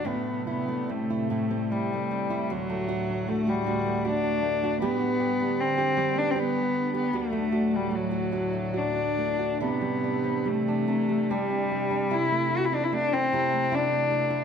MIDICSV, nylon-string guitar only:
0, 0, Header, 1, 2, 480
1, 0, Start_track
1, 0, Tempo, 817439
1, 24, Time_signature, 3, 2, 24, 8
1, 1463, Tempo, 778210
1, 4823, Tempo, 842697
1, 6743, Tempo, 796813
1, 8630, End_track
2, 0, Start_track
2, 0, Title_t, "Nylon-string guitar"
2, 0, Program_c, 0, 24
2, 0, Note_on_c, 0, 38, 60
2, 0, Note_on_c, 0, 62, 44
2, 27, Note_on_c, 0, 45, 59
2, 33, Note_on_c, 0, 64, 53
2, 70, Note_off_c, 0, 38, 0
2, 72, Note_off_c, 0, 62, 0
2, 269, Note_off_c, 0, 64, 0
2, 276, Note_on_c, 0, 64, 54
2, 401, Note_on_c, 0, 57, 46
2, 525, Note_on_c, 0, 60, 51
2, 639, Note_off_c, 0, 64, 0
2, 647, Note_on_c, 0, 64, 52
2, 756, Note_off_c, 0, 45, 0
2, 762, Note_off_c, 0, 64, 0
2, 763, Note_on_c, 0, 45, 56
2, 768, Note_on_c, 0, 64, 51
2, 877, Note_off_c, 0, 60, 0
2, 884, Note_on_c, 0, 60, 44
2, 1000, Note_off_c, 0, 64, 0
2, 1009, Note_on_c, 0, 64, 52
2, 1131, Note_off_c, 0, 57, 0
2, 1134, Note_on_c, 0, 57, 50
2, 1232, Note_off_c, 0, 60, 0
2, 1239, Note_on_c, 0, 60, 50
2, 1344, Note_off_c, 0, 64, 0
2, 1351, Note_on_c, 0, 64, 54
2, 1465, Note_off_c, 0, 64, 0
2, 1469, Note_on_c, 0, 38, 67
2, 1473, Note_on_c, 0, 66, 53
2, 1515, Note_off_c, 0, 45, 0
2, 1516, Note_off_c, 0, 60, 0
2, 1589, Note_off_c, 0, 57, 0
2, 1589, Note_on_c, 0, 57, 49
2, 1699, Note_off_c, 0, 66, 0
2, 1706, Note_on_c, 0, 66, 59
2, 1837, Note_on_c, 0, 62, 47
2, 1944, Note_off_c, 0, 57, 0
2, 1951, Note_on_c, 0, 57, 50
2, 2061, Note_off_c, 0, 66, 0
2, 2067, Note_on_c, 0, 66, 58
2, 2177, Note_off_c, 0, 38, 0
2, 2182, Note_off_c, 0, 66, 0
2, 2184, Note_on_c, 0, 38, 67
2, 2188, Note_on_c, 0, 66, 53
2, 2299, Note_off_c, 0, 57, 0
2, 2307, Note_on_c, 0, 57, 51
2, 2415, Note_off_c, 0, 66, 0
2, 2422, Note_on_c, 0, 66, 63
2, 2539, Note_off_c, 0, 62, 0
2, 2541, Note_on_c, 0, 62, 51
2, 2649, Note_off_c, 0, 57, 0
2, 2657, Note_on_c, 0, 57, 51
2, 2777, Note_off_c, 0, 66, 0
2, 2785, Note_on_c, 0, 66, 53
2, 2898, Note_off_c, 0, 66, 0
2, 2899, Note_on_c, 0, 55, 72
2, 2900, Note_on_c, 0, 67, 59
2, 2945, Note_off_c, 0, 57, 0
2, 2948, Note_off_c, 0, 38, 0
2, 3013, Note_on_c, 0, 59, 60
2, 3125, Note_off_c, 0, 67, 0
2, 3133, Note_on_c, 0, 67, 60
2, 3253, Note_off_c, 0, 62, 0
2, 3256, Note_on_c, 0, 62, 56
2, 3370, Note_off_c, 0, 59, 0
2, 3482, Note_off_c, 0, 67, 0
2, 3489, Note_on_c, 0, 67, 66
2, 3599, Note_off_c, 0, 55, 0
2, 3605, Note_off_c, 0, 67, 0
2, 3607, Note_on_c, 0, 55, 68
2, 3613, Note_on_c, 0, 67, 58
2, 3723, Note_on_c, 0, 59, 53
2, 3841, Note_off_c, 0, 67, 0
2, 3848, Note_on_c, 0, 67, 63
2, 3967, Note_off_c, 0, 62, 0
2, 3969, Note_on_c, 0, 62, 55
2, 4078, Note_off_c, 0, 59, 0
2, 4086, Note_on_c, 0, 59, 51
2, 4203, Note_off_c, 0, 67, 0
2, 4210, Note_on_c, 0, 67, 55
2, 4325, Note_off_c, 0, 67, 0
2, 4325, Note_on_c, 0, 38, 70
2, 4327, Note_on_c, 0, 66, 57
2, 4373, Note_off_c, 0, 59, 0
2, 4374, Note_off_c, 0, 55, 0
2, 4444, Note_on_c, 0, 57, 55
2, 4559, Note_off_c, 0, 66, 0
2, 4566, Note_on_c, 0, 66, 54
2, 4680, Note_off_c, 0, 62, 0
2, 4682, Note_on_c, 0, 62, 46
2, 4796, Note_off_c, 0, 57, 0
2, 4804, Note_on_c, 0, 57, 48
2, 4915, Note_off_c, 0, 66, 0
2, 4922, Note_on_c, 0, 66, 55
2, 5034, Note_off_c, 0, 38, 0
2, 5038, Note_off_c, 0, 66, 0
2, 5041, Note_on_c, 0, 38, 55
2, 5044, Note_on_c, 0, 66, 46
2, 5153, Note_off_c, 0, 57, 0
2, 5160, Note_on_c, 0, 57, 44
2, 5271, Note_off_c, 0, 66, 0
2, 5277, Note_on_c, 0, 66, 52
2, 5402, Note_off_c, 0, 62, 0
2, 5404, Note_on_c, 0, 62, 45
2, 5524, Note_off_c, 0, 57, 0
2, 5531, Note_on_c, 0, 57, 45
2, 5641, Note_off_c, 0, 66, 0
2, 5648, Note_on_c, 0, 66, 42
2, 5772, Note_on_c, 0, 48, 57
2, 5773, Note_off_c, 0, 66, 0
2, 5775, Note_off_c, 0, 62, 0
2, 5775, Note_on_c, 0, 62, 48
2, 5820, Note_off_c, 0, 38, 0
2, 5825, Note_off_c, 0, 57, 0
2, 5891, Note_on_c, 0, 55, 48
2, 6012, Note_off_c, 0, 62, 0
2, 6019, Note_on_c, 0, 62, 47
2, 6133, Note_on_c, 0, 60, 43
2, 6249, Note_off_c, 0, 55, 0
2, 6256, Note_on_c, 0, 55, 50
2, 6378, Note_off_c, 0, 62, 0
2, 6385, Note_on_c, 0, 62, 50
2, 6490, Note_off_c, 0, 48, 0
2, 6491, Note_off_c, 0, 62, 0
2, 6496, Note_on_c, 0, 48, 54
2, 6500, Note_on_c, 0, 62, 46
2, 6611, Note_off_c, 0, 55, 0
2, 6617, Note_on_c, 0, 55, 47
2, 6734, Note_off_c, 0, 62, 0
2, 6741, Note_on_c, 0, 62, 57
2, 6855, Note_off_c, 0, 60, 0
2, 6857, Note_on_c, 0, 60, 49
2, 6978, Note_off_c, 0, 55, 0
2, 6986, Note_on_c, 0, 55, 50
2, 7095, Note_off_c, 0, 62, 0
2, 7102, Note_on_c, 0, 62, 53
2, 7214, Note_off_c, 0, 48, 0
2, 7221, Note_on_c, 0, 48, 63
2, 7223, Note_off_c, 0, 62, 0
2, 7225, Note_on_c, 0, 64, 57
2, 7274, Note_off_c, 0, 55, 0
2, 7348, Note_on_c, 0, 57, 54
2, 7459, Note_off_c, 0, 64, 0
2, 7466, Note_on_c, 0, 64, 55
2, 7590, Note_off_c, 0, 60, 0
2, 7592, Note_on_c, 0, 60, 50
2, 7713, Note_off_c, 0, 57, 0
2, 7715, Note_on_c, 0, 57, 55
2, 7834, Note_off_c, 0, 64, 0
2, 7841, Note_on_c, 0, 64, 60
2, 7953, Note_off_c, 0, 48, 0
2, 7959, Note_off_c, 0, 64, 0
2, 7960, Note_on_c, 0, 48, 65
2, 7966, Note_on_c, 0, 64, 58
2, 8079, Note_off_c, 0, 57, 0
2, 8082, Note_on_c, 0, 57, 55
2, 8187, Note_off_c, 0, 64, 0
2, 8194, Note_on_c, 0, 64, 65
2, 8310, Note_off_c, 0, 60, 0
2, 8317, Note_on_c, 0, 60, 59
2, 8429, Note_off_c, 0, 57, 0
2, 8432, Note_on_c, 0, 57, 57
2, 8539, Note_off_c, 0, 64, 0
2, 8546, Note_on_c, 0, 64, 62
2, 8630, Note_off_c, 0, 48, 0
2, 8630, Note_off_c, 0, 57, 0
2, 8630, Note_off_c, 0, 60, 0
2, 8630, Note_off_c, 0, 64, 0
2, 8630, End_track
0, 0, End_of_file